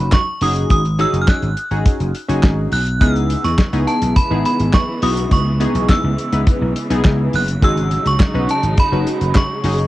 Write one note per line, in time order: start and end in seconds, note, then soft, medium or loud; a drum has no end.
0.00 0.20 C#4 medium
0.00 0.20 D#4 medium
0.00 0.20 F#4 medium
0.00 0.20 B4 medium
0.00 0.15 B5 medium
0.12 0.43 C#6 loud
0.12 kick loud
0.12 snare loud
0.12 clap medium
0.41 0.63 F#1 loud
0.41 0.82 C#4 medium
0.41 0.82 D#4 medium
0.41 0.82 F#4 medium
0.41 0.82 G#4 medium
0.41 0.70 D#6 loud
0.41 open hi-hat medium
0.56 closed hi-hat medium
0.70 1.03 G#1 loud
0.70 0.97 D#6 loud
0.70 kick loud
0.70 closed hi-hat loud
0.85 closed hi-hat soft
0.98 1.49 C#4 medium
0.98 1.49 D#4 medium
0.98 1.49 F#4 medium
0.98 1.50 G#4 loud
0.98 1.10 E6 medium
0.98 closed hi-hat medium
1.13 1.24 F#1 medium
1.13 closed hi-hat medium
1.21 1.28 F6 medium
1.28 1.82 F#6 medium
1.28 kick loud
1.28 snare loud
1.28 clap medium
1.42 1.53 G#1 medium
1.42 closed hi-hat soft
1.57 closed hi-hat medium
1.71 1.82 G#1 medium
1.71 2.11 C#4 medium
1.71 2.12 D#4 medium
1.71 2.12 F#4 medium
1.71 2.12 G#4 medium
1.71 closed hi-hat medium
1.86 kick loud
1.86 closed hi-hat loud
2.00 2.11 F#1 medium
2.00 closed hi-hat soft
2.15 closed hi-hat medium
2.28 2.43 F#1 medium
2.28 2.79 C#4 medium
2.28 2.79 D#4 medium
2.28 2.79 F#4 medium
2.28 2.79 G#4 loud
2.28 closed hi-hat medium
2.43 2.66 G#1 loud
2.43 kick loud
2.43 snare loud
2.43 clap medium
2.72 3.01 B1 loud
2.72 3.02 F#6 loud
2.72 open hi-hat medium
2.87 closed hi-hat medium
3.01 3.34 C#2 medium
3.01 9.87 C#3 medium
3.01 7.58 E3 medium
3.01 7.59 G#3 medium
3.01 3.51 B3 loud
3.01 7.58 B3 medium
3.01 3.51 D#4 medium
3.01 3.52 E4 medium
3.01 3.52 G#4 medium
3.01 3.46 E6 loud
3.01 kick loud
3.01 closed hi-hat medium
3.16 closed hi-hat soft
3.30 closed hi-hat medium
3.44 3.55 E2 medium
3.44 3.89 C#6 medium
3.44 closed hi-hat medium
3.58 kick loud
3.58 snare loud
3.58 clap loud
3.73 3.84 C#2 medium
3.73 4.13 B3 medium
3.73 4.13 D#4 medium
3.73 4.14 E4 medium
3.73 4.14 G#4 loud
3.73 closed hi-hat soft
3.88 4.17 A5 medium
3.88 closed hi-hat medium
4.02 4.13 B1 medium
4.02 closed hi-hat medium
4.16 4.43 B5 loud
4.16 kick loud
4.16 closed hi-hat medium
4.30 4.42 G#1 loud
4.30 4.81 B3 medium
4.30 4.81 D#4 medium
4.30 4.81 E4 medium
4.30 4.81 G#4 medium
4.45 4.75 B5 medium
4.45 closed hi-hat medium
4.60 4.71 G#1 medium
4.60 closed hi-hat medium
4.74 5.04 C#6 medium
4.74 kick loud
4.74 snare loud
4.74 clap medium
5.02 5.25 B1 loud
5.02 5.43 B3 medium
5.02 5.43 D#4 medium
5.02 5.43 E4 medium
5.02 5.43 F#4 medium
5.02 5.16 D#6 loud
5.02 open hi-hat medium
5.17 closed hi-hat medium
5.31 5.65 C#2 medium
5.31 5.92 C#6 loud
5.31 kick loud
5.31 closed hi-hat loud
5.60 6.11 B3 medium
5.60 6.11 D#4 medium
5.60 6.11 E4 medium
5.60 6.11 G#4 loud
5.60 closed hi-hat medium
5.75 5.86 B1 medium
5.75 closed hi-hat medium
5.89 6.43 E6 medium
5.89 kick loud
5.89 snare loud
5.89 clap loud
6.04 6.15 C#2 medium
6.18 closed hi-hat medium
6.32 6.44 C#2 medium
6.32 6.73 B3 medium
6.32 6.73 D#4 medium
6.32 6.73 E4 medium
6.32 6.73 B4 medium
6.32 closed hi-hat medium
6.47 kick loud
6.47 closed hi-hat loud
6.61 6.73 B1 medium
6.76 closed hi-hat medium
6.90 7.01 B1 medium
6.90 7.41 B3 loud
6.90 7.41 D#4 medium
6.90 7.41 E4 medium
6.90 7.41 G#4 loud
6.90 closed hi-hat medium
7.05 7.27 C#2 loud
7.05 kick loud
7.05 snare loud
7.05 clap medium
7.33 7.56 F#1 loud
7.33 7.48 F#6 loud
7.33 open hi-hat medium
7.48 closed hi-hat medium
7.62 7.96 G#1 loud
7.62 9.87 F#3 medium
7.62 9.87 G#3 medium
7.62 8.13 C#4 medium
7.62 8.13 D#4 medium
7.62 9.87 D#4 medium
7.62 8.13 F#4 medium
7.62 8.13 G#4 loud
7.62 8.08 E6 loud
7.62 kick loud
7.62 closed hi-hat medium
7.77 closed hi-hat soft
7.91 closed hi-hat medium
8.05 8.17 C#2 medium
8.05 8.51 C#6 medium
8.05 closed hi-hat medium
8.20 kick loud
8.20 snare loud
8.20 clap loud
8.34 8.45 B1 medium
8.34 8.75 C#4 medium
8.34 8.75 D#4 medium
8.34 8.75 F#4 medium
8.34 8.75 B4 loud
8.49 8.79 A5 loud
8.49 closed hi-hat medium
8.63 8.74 G#1 medium
8.63 closed hi-hat medium
8.77 9.32 B5 loud
8.77 kick loud
8.77 closed hi-hat loud
8.92 9.03 F#1 medium
8.92 9.42 C#4 medium
8.92 9.43 D#4 medium
8.92 9.43 F#4 medium
8.92 9.43 B4 medium
9.07 closed hi-hat medium
9.21 9.32 F#1 medium
9.21 closed hi-hat medium
9.35 9.87 C#6 medium
9.35 kick loud
9.35 snare loud
9.35 clap loud
9.64 9.86 F#1 loud
9.64 9.87 C#4 medium
9.64 9.87 D#4 medium
9.64 9.87 F#4 medium
9.64 9.87 G#4 medium
9.64 open hi-hat medium
9.78 closed hi-hat medium